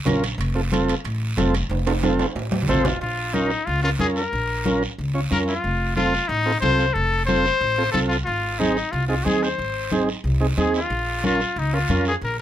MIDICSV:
0, 0, Header, 1, 5, 480
1, 0, Start_track
1, 0, Tempo, 328587
1, 568, Time_signature, 4, 2, 24, 8
1, 18131, End_track
2, 0, Start_track
2, 0, Title_t, "Transistor combo organ"
2, 0, Program_c, 0, 18
2, 76, Note_on_c, 0, 61, 72
2, 86, Note_on_c, 0, 65, 69
2, 92, Note_on_c, 0, 70, 82
2, 334, Note_off_c, 0, 61, 0
2, 339, Note_off_c, 0, 65, 0
2, 342, Note_off_c, 0, 70, 0
2, 802, Note_on_c, 0, 60, 74
2, 811, Note_on_c, 0, 65, 67
2, 816, Note_on_c, 0, 69, 77
2, 889, Note_off_c, 0, 60, 0
2, 893, Note_off_c, 0, 65, 0
2, 896, Note_off_c, 0, 69, 0
2, 1052, Note_on_c, 0, 60, 73
2, 1059, Note_on_c, 0, 65, 69
2, 1063, Note_on_c, 0, 69, 82
2, 1385, Note_off_c, 0, 60, 0
2, 1389, Note_off_c, 0, 65, 0
2, 1391, Note_off_c, 0, 69, 0
2, 2003, Note_on_c, 0, 60, 75
2, 2008, Note_on_c, 0, 65, 72
2, 2011, Note_on_c, 0, 69, 84
2, 2256, Note_off_c, 0, 60, 0
2, 2259, Note_off_c, 0, 65, 0
2, 2260, Note_off_c, 0, 69, 0
2, 2725, Note_on_c, 0, 60, 75
2, 2733, Note_on_c, 0, 65, 63
2, 2733, Note_on_c, 0, 69, 78
2, 2809, Note_off_c, 0, 60, 0
2, 2813, Note_off_c, 0, 65, 0
2, 2813, Note_off_c, 0, 69, 0
2, 2963, Note_on_c, 0, 60, 80
2, 2969, Note_on_c, 0, 65, 67
2, 2979, Note_on_c, 0, 69, 83
2, 3300, Note_off_c, 0, 60, 0
2, 3303, Note_off_c, 0, 65, 0
2, 3308, Note_off_c, 0, 69, 0
2, 3925, Note_on_c, 0, 60, 71
2, 3928, Note_on_c, 0, 65, 66
2, 3935, Note_on_c, 0, 72, 81
2, 4176, Note_off_c, 0, 60, 0
2, 4178, Note_off_c, 0, 65, 0
2, 4181, Note_off_c, 0, 72, 0
2, 4871, Note_on_c, 0, 61, 69
2, 4874, Note_on_c, 0, 65, 60
2, 4879, Note_on_c, 0, 70, 77
2, 5129, Note_off_c, 0, 61, 0
2, 5130, Note_off_c, 0, 65, 0
2, 5133, Note_off_c, 0, 70, 0
2, 5601, Note_on_c, 0, 61, 52
2, 5602, Note_on_c, 0, 65, 53
2, 5610, Note_on_c, 0, 70, 65
2, 5686, Note_off_c, 0, 61, 0
2, 5686, Note_off_c, 0, 65, 0
2, 5691, Note_off_c, 0, 70, 0
2, 5830, Note_on_c, 0, 61, 56
2, 5832, Note_on_c, 0, 65, 61
2, 5840, Note_on_c, 0, 70, 63
2, 6172, Note_off_c, 0, 61, 0
2, 6173, Note_off_c, 0, 65, 0
2, 6177, Note_off_c, 0, 70, 0
2, 6800, Note_on_c, 0, 61, 79
2, 6803, Note_on_c, 0, 65, 75
2, 6813, Note_on_c, 0, 70, 90
2, 7053, Note_off_c, 0, 61, 0
2, 7055, Note_off_c, 0, 65, 0
2, 7059, Note_off_c, 0, 70, 0
2, 7513, Note_on_c, 0, 61, 71
2, 7517, Note_on_c, 0, 65, 64
2, 7525, Note_on_c, 0, 73, 74
2, 7601, Note_off_c, 0, 61, 0
2, 7604, Note_off_c, 0, 65, 0
2, 7608, Note_off_c, 0, 73, 0
2, 7751, Note_on_c, 0, 61, 63
2, 7761, Note_on_c, 0, 65, 61
2, 7762, Note_on_c, 0, 70, 68
2, 8092, Note_off_c, 0, 61, 0
2, 8097, Note_off_c, 0, 65, 0
2, 8098, Note_off_c, 0, 70, 0
2, 8713, Note_on_c, 0, 60, 67
2, 8722, Note_on_c, 0, 65, 59
2, 8725, Note_on_c, 0, 69, 74
2, 8969, Note_off_c, 0, 60, 0
2, 8974, Note_off_c, 0, 65, 0
2, 8975, Note_off_c, 0, 69, 0
2, 9436, Note_on_c, 0, 60, 57
2, 9436, Note_on_c, 0, 65, 55
2, 9445, Note_on_c, 0, 69, 68
2, 9523, Note_off_c, 0, 60, 0
2, 9523, Note_off_c, 0, 65, 0
2, 9527, Note_off_c, 0, 69, 0
2, 9680, Note_on_c, 0, 60, 62
2, 9686, Note_on_c, 0, 65, 62
2, 9694, Note_on_c, 0, 69, 69
2, 10017, Note_off_c, 0, 60, 0
2, 10019, Note_off_c, 0, 65, 0
2, 10024, Note_off_c, 0, 69, 0
2, 10637, Note_on_c, 0, 60, 62
2, 10647, Note_on_c, 0, 65, 59
2, 10647, Note_on_c, 0, 69, 75
2, 10891, Note_off_c, 0, 60, 0
2, 10896, Note_off_c, 0, 65, 0
2, 10896, Note_off_c, 0, 69, 0
2, 11364, Note_on_c, 0, 60, 68
2, 11366, Note_on_c, 0, 65, 56
2, 11372, Note_on_c, 0, 69, 73
2, 11447, Note_off_c, 0, 60, 0
2, 11448, Note_off_c, 0, 65, 0
2, 11450, Note_off_c, 0, 69, 0
2, 11590, Note_on_c, 0, 60, 66
2, 11597, Note_on_c, 0, 65, 60
2, 11602, Note_on_c, 0, 69, 67
2, 11932, Note_off_c, 0, 60, 0
2, 11935, Note_off_c, 0, 65, 0
2, 11938, Note_off_c, 0, 69, 0
2, 12554, Note_on_c, 0, 60, 71
2, 12559, Note_on_c, 0, 63, 55
2, 12562, Note_on_c, 0, 68, 77
2, 12810, Note_off_c, 0, 60, 0
2, 12813, Note_off_c, 0, 63, 0
2, 12814, Note_off_c, 0, 68, 0
2, 13270, Note_on_c, 0, 60, 52
2, 13281, Note_on_c, 0, 63, 54
2, 13286, Note_on_c, 0, 68, 65
2, 13360, Note_off_c, 0, 60, 0
2, 13365, Note_off_c, 0, 63, 0
2, 13368, Note_off_c, 0, 68, 0
2, 13512, Note_on_c, 0, 60, 57
2, 13522, Note_on_c, 0, 63, 57
2, 13525, Note_on_c, 0, 68, 65
2, 13853, Note_off_c, 0, 60, 0
2, 13858, Note_off_c, 0, 63, 0
2, 13859, Note_off_c, 0, 68, 0
2, 14488, Note_on_c, 0, 60, 82
2, 14490, Note_on_c, 0, 63, 72
2, 14499, Note_on_c, 0, 68, 80
2, 14738, Note_off_c, 0, 60, 0
2, 14739, Note_off_c, 0, 63, 0
2, 14743, Note_off_c, 0, 68, 0
2, 15201, Note_on_c, 0, 60, 69
2, 15201, Note_on_c, 0, 63, 67
2, 15209, Note_on_c, 0, 68, 76
2, 15286, Note_off_c, 0, 60, 0
2, 15287, Note_off_c, 0, 63, 0
2, 15290, Note_off_c, 0, 68, 0
2, 15443, Note_on_c, 0, 60, 66
2, 15449, Note_on_c, 0, 63, 57
2, 15454, Note_on_c, 0, 68, 70
2, 15780, Note_off_c, 0, 60, 0
2, 15783, Note_off_c, 0, 63, 0
2, 15785, Note_off_c, 0, 68, 0
2, 16413, Note_on_c, 0, 61, 69
2, 16417, Note_on_c, 0, 65, 60
2, 16426, Note_on_c, 0, 70, 74
2, 16662, Note_off_c, 0, 61, 0
2, 16664, Note_off_c, 0, 65, 0
2, 16668, Note_off_c, 0, 70, 0
2, 17136, Note_on_c, 0, 61, 61
2, 17141, Note_on_c, 0, 65, 50
2, 17145, Note_on_c, 0, 70, 66
2, 17216, Note_off_c, 0, 61, 0
2, 17218, Note_off_c, 0, 65, 0
2, 17220, Note_off_c, 0, 70, 0
2, 17376, Note_on_c, 0, 61, 62
2, 17384, Note_on_c, 0, 65, 61
2, 17389, Note_on_c, 0, 70, 70
2, 17709, Note_off_c, 0, 61, 0
2, 17712, Note_off_c, 0, 65, 0
2, 17715, Note_off_c, 0, 70, 0
2, 18131, End_track
3, 0, Start_track
3, 0, Title_t, "Trumpet"
3, 0, Program_c, 1, 56
3, 3917, Note_on_c, 1, 69, 78
3, 4159, Note_on_c, 1, 65, 75
3, 4181, Note_off_c, 1, 69, 0
3, 4396, Note_off_c, 1, 65, 0
3, 4405, Note_on_c, 1, 65, 76
3, 4871, Note_on_c, 1, 63, 84
3, 4893, Note_off_c, 1, 65, 0
3, 5354, Note_on_c, 1, 65, 88
3, 5376, Note_off_c, 1, 63, 0
3, 5586, Note_off_c, 1, 65, 0
3, 5594, Note_on_c, 1, 65, 85
3, 5704, Note_off_c, 1, 65, 0
3, 5837, Note_on_c, 1, 68, 83
3, 5946, Note_off_c, 1, 68, 0
3, 6091, Note_on_c, 1, 70, 82
3, 6988, Note_off_c, 1, 70, 0
3, 7770, Note_on_c, 1, 70, 79
3, 7876, Note_off_c, 1, 70, 0
3, 8007, Note_on_c, 1, 65, 85
3, 8674, Note_off_c, 1, 65, 0
3, 8705, Note_on_c, 1, 65, 93
3, 9172, Note_on_c, 1, 63, 96
3, 9194, Note_off_c, 1, 65, 0
3, 9638, Note_off_c, 1, 63, 0
3, 9647, Note_on_c, 1, 72, 99
3, 10129, Note_on_c, 1, 69, 97
3, 10151, Note_off_c, 1, 72, 0
3, 10596, Note_off_c, 1, 69, 0
3, 10605, Note_on_c, 1, 72, 101
3, 11525, Note_off_c, 1, 72, 0
3, 11564, Note_on_c, 1, 69, 85
3, 11680, Note_off_c, 1, 69, 0
3, 11806, Note_on_c, 1, 65, 73
3, 11922, Note_off_c, 1, 65, 0
3, 12045, Note_on_c, 1, 65, 82
3, 12546, Note_on_c, 1, 63, 84
3, 12568, Note_off_c, 1, 65, 0
3, 13025, Note_on_c, 1, 65, 81
3, 13047, Note_off_c, 1, 63, 0
3, 13243, Note_off_c, 1, 65, 0
3, 13252, Note_on_c, 1, 65, 76
3, 13507, Note_on_c, 1, 68, 83
3, 13528, Note_off_c, 1, 65, 0
3, 13780, Note_on_c, 1, 72, 79
3, 13802, Note_off_c, 1, 68, 0
3, 14732, Note_off_c, 1, 72, 0
3, 15478, Note_on_c, 1, 68, 77
3, 15686, Note_off_c, 1, 68, 0
3, 15722, Note_on_c, 1, 65, 81
3, 16375, Note_off_c, 1, 65, 0
3, 16441, Note_on_c, 1, 65, 85
3, 16929, Note_on_c, 1, 63, 82
3, 16951, Note_off_c, 1, 65, 0
3, 17156, Note_on_c, 1, 65, 86
3, 17178, Note_off_c, 1, 63, 0
3, 17623, Note_off_c, 1, 65, 0
3, 17645, Note_on_c, 1, 68, 84
3, 17745, Note_off_c, 1, 68, 0
3, 17881, Note_on_c, 1, 70, 81
3, 18089, Note_off_c, 1, 70, 0
3, 18131, End_track
4, 0, Start_track
4, 0, Title_t, "Upright bass"
4, 0, Program_c, 2, 32
4, 78, Note_on_c, 2, 34, 89
4, 466, Note_off_c, 2, 34, 0
4, 554, Note_on_c, 2, 29, 94
4, 1327, Note_off_c, 2, 29, 0
4, 1526, Note_on_c, 2, 33, 90
4, 1910, Note_off_c, 2, 33, 0
4, 1999, Note_on_c, 2, 29, 91
4, 2385, Note_off_c, 2, 29, 0
4, 2475, Note_on_c, 2, 29, 97
4, 3246, Note_off_c, 2, 29, 0
4, 3440, Note_on_c, 2, 33, 88
4, 3826, Note_off_c, 2, 33, 0
4, 3912, Note_on_c, 2, 33, 92
4, 4300, Note_off_c, 2, 33, 0
4, 4398, Note_on_c, 2, 34, 83
4, 5168, Note_off_c, 2, 34, 0
4, 5366, Note_on_c, 2, 37, 93
4, 5748, Note_off_c, 2, 37, 0
4, 5832, Note_on_c, 2, 41, 87
4, 6220, Note_off_c, 2, 41, 0
4, 6320, Note_on_c, 2, 34, 84
4, 7088, Note_off_c, 2, 34, 0
4, 7281, Note_on_c, 2, 37, 85
4, 7665, Note_off_c, 2, 37, 0
4, 7762, Note_on_c, 2, 41, 86
4, 8146, Note_off_c, 2, 41, 0
4, 8237, Note_on_c, 2, 29, 91
4, 9007, Note_off_c, 2, 29, 0
4, 9190, Note_on_c, 2, 33, 97
4, 9578, Note_off_c, 2, 33, 0
4, 9669, Note_on_c, 2, 36, 93
4, 10058, Note_off_c, 2, 36, 0
4, 10159, Note_on_c, 2, 29, 89
4, 10928, Note_off_c, 2, 29, 0
4, 11113, Note_on_c, 2, 33, 84
4, 11500, Note_off_c, 2, 33, 0
4, 11601, Note_on_c, 2, 36, 83
4, 11985, Note_off_c, 2, 36, 0
4, 12077, Note_on_c, 2, 32, 92
4, 12847, Note_off_c, 2, 32, 0
4, 13040, Note_on_c, 2, 36, 96
4, 13425, Note_off_c, 2, 36, 0
4, 13523, Note_on_c, 2, 39, 86
4, 13907, Note_off_c, 2, 39, 0
4, 14001, Note_on_c, 2, 32, 81
4, 14770, Note_off_c, 2, 32, 0
4, 14958, Note_on_c, 2, 36, 92
4, 15345, Note_off_c, 2, 36, 0
4, 15443, Note_on_c, 2, 39, 88
4, 15828, Note_off_c, 2, 39, 0
4, 15923, Note_on_c, 2, 34, 90
4, 16693, Note_off_c, 2, 34, 0
4, 16890, Note_on_c, 2, 37, 91
4, 17273, Note_off_c, 2, 37, 0
4, 17367, Note_on_c, 2, 41, 88
4, 17752, Note_off_c, 2, 41, 0
4, 17843, Note_on_c, 2, 34, 90
4, 18131, Note_off_c, 2, 34, 0
4, 18131, End_track
5, 0, Start_track
5, 0, Title_t, "Drums"
5, 89, Note_on_c, 9, 63, 77
5, 89, Note_on_c, 9, 64, 74
5, 97, Note_on_c, 9, 65, 65
5, 97, Note_on_c, 9, 66, 67
5, 111, Note_on_c, 9, 73, 65
5, 235, Note_off_c, 9, 63, 0
5, 235, Note_off_c, 9, 64, 0
5, 243, Note_off_c, 9, 65, 0
5, 243, Note_off_c, 9, 66, 0
5, 257, Note_off_c, 9, 73, 0
5, 342, Note_on_c, 9, 73, 66
5, 348, Note_on_c, 9, 65, 66
5, 488, Note_off_c, 9, 73, 0
5, 494, Note_off_c, 9, 65, 0
5, 571, Note_on_c, 9, 63, 33
5, 578, Note_on_c, 9, 74, 64
5, 594, Note_on_c, 9, 65, 76
5, 717, Note_off_c, 9, 63, 0
5, 724, Note_off_c, 9, 74, 0
5, 740, Note_off_c, 9, 65, 0
5, 1050, Note_on_c, 9, 63, 83
5, 1057, Note_on_c, 9, 73, 66
5, 1076, Note_on_c, 9, 65, 67
5, 1196, Note_off_c, 9, 63, 0
5, 1204, Note_off_c, 9, 73, 0
5, 1222, Note_off_c, 9, 65, 0
5, 1293, Note_on_c, 9, 73, 66
5, 1307, Note_on_c, 9, 65, 62
5, 1439, Note_off_c, 9, 73, 0
5, 1453, Note_off_c, 9, 65, 0
5, 1537, Note_on_c, 9, 65, 62
5, 1542, Note_on_c, 9, 74, 70
5, 1544, Note_on_c, 9, 63, 32
5, 1683, Note_off_c, 9, 65, 0
5, 1689, Note_off_c, 9, 74, 0
5, 1690, Note_off_c, 9, 63, 0
5, 2015, Note_on_c, 9, 63, 72
5, 2019, Note_on_c, 9, 65, 67
5, 2019, Note_on_c, 9, 66, 64
5, 2019, Note_on_c, 9, 73, 66
5, 2161, Note_off_c, 9, 63, 0
5, 2165, Note_off_c, 9, 65, 0
5, 2165, Note_off_c, 9, 66, 0
5, 2165, Note_off_c, 9, 73, 0
5, 2258, Note_on_c, 9, 65, 70
5, 2263, Note_on_c, 9, 73, 71
5, 2404, Note_off_c, 9, 65, 0
5, 2409, Note_off_c, 9, 73, 0
5, 2495, Note_on_c, 9, 63, 33
5, 2495, Note_on_c, 9, 74, 66
5, 2500, Note_on_c, 9, 65, 74
5, 2641, Note_off_c, 9, 63, 0
5, 2642, Note_off_c, 9, 74, 0
5, 2646, Note_off_c, 9, 65, 0
5, 2734, Note_on_c, 9, 65, 84
5, 2880, Note_off_c, 9, 65, 0
5, 2967, Note_on_c, 9, 63, 76
5, 2968, Note_on_c, 9, 65, 87
5, 2973, Note_on_c, 9, 73, 68
5, 3113, Note_off_c, 9, 63, 0
5, 3114, Note_off_c, 9, 65, 0
5, 3119, Note_off_c, 9, 73, 0
5, 3204, Note_on_c, 9, 65, 85
5, 3215, Note_on_c, 9, 73, 62
5, 3350, Note_off_c, 9, 65, 0
5, 3361, Note_off_c, 9, 73, 0
5, 3444, Note_on_c, 9, 63, 32
5, 3448, Note_on_c, 9, 66, 78
5, 3457, Note_on_c, 9, 74, 71
5, 3590, Note_off_c, 9, 63, 0
5, 3594, Note_off_c, 9, 66, 0
5, 3603, Note_off_c, 9, 74, 0
5, 3676, Note_on_c, 9, 63, 82
5, 3681, Note_on_c, 9, 66, 74
5, 3822, Note_off_c, 9, 63, 0
5, 3827, Note_off_c, 9, 66, 0
5, 3838, Note_on_c, 9, 64, 77
5, 3934, Note_on_c, 9, 66, 82
5, 3935, Note_on_c, 9, 73, 70
5, 3984, Note_off_c, 9, 64, 0
5, 4002, Note_on_c, 9, 64, 71
5, 4080, Note_off_c, 9, 66, 0
5, 4081, Note_off_c, 9, 73, 0
5, 4148, Note_off_c, 9, 64, 0
5, 4162, Note_on_c, 9, 64, 94
5, 4165, Note_on_c, 9, 73, 67
5, 4174, Note_on_c, 9, 66, 82
5, 4308, Note_off_c, 9, 64, 0
5, 4311, Note_off_c, 9, 73, 0
5, 4320, Note_off_c, 9, 66, 0
5, 4400, Note_on_c, 9, 63, 32
5, 4405, Note_on_c, 9, 74, 63
5, 4546, Note_off_c, 9, 63, 0
5, 4551, Note_off_c, 9, 74, 0
5, 4879, Note_on_c, 9, 63, 72
5, 4882, Note_on_c, 9, 73, 66
5, 5025, Note_off_c, 9, 63, 0
5, 5028, Note_off_c, 9, 73, 0
5, 5119, Note_on_c, 9, 73, 63
5, 5265, Note_off_c, 9, 73, 0
5, 5357, Note_on_c, 9, 63, 29
5, 5365, Note_on_c, 9, 74, 65
5, 5503, Note_off_c, 9, 63, 0
5, 5511, Note_off_c, 9, 74, 0
5, 5829, Note_on_c, 9, 63, 70
5, 5849, Note_on_c, 9, 73, 69
5, 5976, Note_off_c, 9, 63, 0
5, 5995, Note_off_c, 9, 73, 0
5, 6077, Note_on_c, 9, 73, 65
5, 6223, Note_off_c, 9, 73, 0
5, 6320, Note_on_c, 9, 63, 34
5, 6325, Note_on_c, 9, 74, 64
5, 6466, Note_off_c, 9, 63, 0
5, 6471, Note_off_c, 9, 74, 0
5, 6800, Note_on_c, 9, 63, 80
5, 6809, Note_on_c, 9, 73, 64
5, 6946, Note_off_c, 9, 63, 0
5, 6955, Note_off_c, 9, 73, 0
5, 7053, Note_on_c, 9, 73, 60
5, 7199, Note_off_c, 9, 73, 0
5, 7291, Note_on_c, 9, 74, 68
5, 7293, Note_on_c, 9, 63, 29
5, 7437, Note_off_c, 9, 74, 0
5, 7439, Note_off_c, 9, 63, 0
5, 7766, Note_on_c, 9, 63, 72
5, 7770, Note_on_c, 9, 73, 74
5, 7912, Note_off_c, 9, 63, 0
5, 7916, Note_off_c, 9, 73, 0
5, 8003, Note_on_c, 9, 73, 62
5, 8149, Note_off_c, 9, 73, 0
5, 8244, Note_on_c, 9, 63, 31
5, 8253, Note_on_c, 9, 74, 57
5, 8390, Note_off_c, 9, 63, 0
5, 8399, Note_off_c, 9, 74, 0
5, 8718, Note_on_c, 9, 63, 75
5, 8736, Note_on_c, 9, 73, 68
5, 8864, Note_off_c, 9, 63, 0
5, 8882, Note_off_c, 9, 73, 0
5, 8969, Note_on_c, 9, 73, 67
5, 9115, Note_off_c, 9, 73, 0
5, 9190, Note_on_c, 9, 63, 29
5, 9208, Note_on_c, 9, 74, 68
5, 9336, Note_off_c, 9, 63, 0
5, 9354, Note_off_c, 9, 74, 0
5, 9673, Note_on_c, 9, 63, 70
5, 9678, Note_on_c, 9, 73, 63
5, 9819, Note_off_c, 9, 63, 0
5, 9824, Note_off_c, 9, 73, 0
5, 9914, Note_on_c, 9, 73, 61
5, 10061, Note_off_c, 9, 73, 0
5, 10157, Note_on_c, 9, 74, 60
5, 10162, Note_on_c, 9, 63, 31
5, 10303, Note_off_c, 9, 74, 0
5, 10308, Note_off_c, 9, 63, 0
5, 10639, Note_on_c, 9, 73, 68
5, 10643, Note_on_c, 9, 63, 77
5, 10786, Note_off_c, 9, 73, 0
5, 10789, Note_off_c, 9, 63, 0
5, 10884, Note_on_c, 9, 73, 62
5, 11030, Note_off_c, 9, 73, 0
5, 11122, Note_on_c, 9, 63, 31
5, 11126, Note_on_c, 9, 74, 65
5, 11268, Note_off_c, 9, 63, 0
5, 11272, Note_off_c, 9, 74, 0
5, 11603, Note_on_c, 9, 63, 69
5, 11608, Note_on_c, 9, 73, 72
5, 11749, Note_off_c, 9, 63, 0
5, 11754, Note_off_c, 9, 73, 0
5, 11851, Note_on_c, 9, 73, 70
5, 11997, Note_off_c, 9, 73, 0
5, 12084, Note_on_c, 9, 74, 64
5, 12090, Note_on_c, 9, 63, 33
5, 12231, Note_off_c, 9, 74, 0
5, 12236, Note_off_c, 9, 63, 0
5, 12574, Note_on_c, 9, 73, 71
5, 12582, Note_on_c, 9, 63, 77
5, 12720, Note_off_c, 9, 73, 0
5, 12728, Note_off_c, 9, 63, 0
5, 12812, Note_on_c, 9, 73, 65
5, 12958, Note_off_c, 9, 73, 0
5, 13056, Note_on_c, 9, 63, 32
5, 13061, Note_on_c, 9, 74, 67
5, 13203, Note_off_c, 9, 63, 0
5, 13207, Note_off_c, 9, 74, 0
5, 13531, Note_on_c, 9, 63, 77
5, 13541, Note_on_c, 9, 73, 72
5, 13677, Note_off_c, 9, 63, 0
5, 13687, Note_off_c, 9, 73, 0
5, 13774, Note_on_c, 9, 73, 72
5, 13920, Note_off_c, 9, 73, 0
5, 14014, Note_on_c, 9, 74, 66
5, 14024, Note_on_c, 9, 63, 31
5, 14160, Note_off_c, 9, 74, 0
5, 14170, Note_off_c, 9, 63, 0
5, 14486, Note_on_c, 9, 63, 72
5, 14495, Note_on_c, 9, 73, 65
5, 14632, Note_off_c, 9, 63, 0
5, 14641, Note_off_c, 9, 73, 0
5, 14737, Note_on_c, 9, 73, 61
5, 14883, Note_off_c, 9, 73, 0
5, 14965, Note_on_c, 9, 63, 30
5, 14980, Note_on_c, 9, 74, 70
5, 15111, Note_off_c, 9, 63, 0
5, 15126, Note_off_c, 9, 74, 0
5, 15449, Note_on_c, 9, 63, 73
5, 15456, Note_on_c, 9, 73, 66
5, 15595, Note_off_c, 9, 63, 0
5, 15602, Note_off_c, 9, 73, 0
5, 15694, Note_on_c, 9, 73, 66
5, 15840, Note_off_c, 9, 73, 0
5, 15931, Note_on_c, 9, 74, 68
5, 15936, Note_on_c, 9, 63, 33
5, 16077, Note_off_c, 9, 74, 0
5, 16082, Note_off_c, 9, 63, 0
5, 16417, Note_on_c, 9, 63, 77
5, 16418, Note_on_c, 9, 73, 69
5, 16563, Note_off_c, 9, 63, 0
5, 16564, Note_off_c, 9, 73, 0
5, 16658, Note_on_c, 9, 73, 67
5, 16804, Note_off_c, 9, 73, 0
5, 16898, Note_on_c, 9, 74, 70
5, 16904, Note_on_c, 9, 63, 31
5, 17044, Note_off_c, 9, 74, 0
5, 17050, Note_off_c, 9, 63, 0
5, 17372, Note_on_c, 9, 73, 69
5, 17379, Note_on_c, 9, 63, 76
5, 17518, Note_off_c, 9, 73, 0
5, 17526, Note_off_c, 9, 63, 0
5, 17604, Note_on_c, 9, 73, 66
5, 17750, Note_off_c, 9, 73, 0
5, 17854, Note_on_c, 9, 74, 62
5, 17860, Note_on_c, 9, 63, 31
5, 18000, Note_off_c, 9, 74, 0
5, 18006, Note_off_c, 9, 63, 0
5, 18131, End_track
0, 0, End_of_file